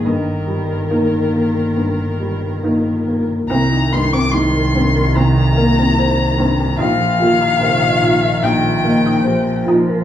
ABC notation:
X:1
M:4/4
L:1/16
Q:1/4=72
K:Eb
V:1 name="Violin"
B12- B3 z | b2 c' d' c'4 b8 | f8 g6 z2 |]
V:2 name="Synth pluck"
z16 | C E E C G B C B C z B C E z C G | E G G E B e E e E z e E G z E B |]
V:3 name="Upright piano"
e12- e2 z2 | z16 | z16 |]
V:4 name="Upright piano" clef=bass
G,,2 G,2 [B,EB]2 B,2 G,,2 G,2 [B,EB]2 B,2 | C,,2 G,,2 A,,2 G,,2 C,,2 B,2 C2 G,,2 | B,,,2 B,,2 C,2 B,,2 B,,,2 B,2 C2 B,,2 |]
V:5 name="Cello" clef=bass
E,12- E,3 z | E,16 | F,2 E,6 E,4 F,4 |]
V:6 name="Double bass" clef=bass
G,,,16 | C,,16 | B,,,16 |]